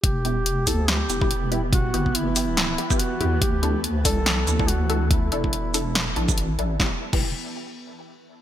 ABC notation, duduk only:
X:1
M:4/4
L:1/8
Q:"Swing 16ths" 1/4=142
K:Em
V:1 name="Duduk"
G3 A G3 E | F2 E4 F2 | G2 z A3 F2 | E6 z2 |
z8 |]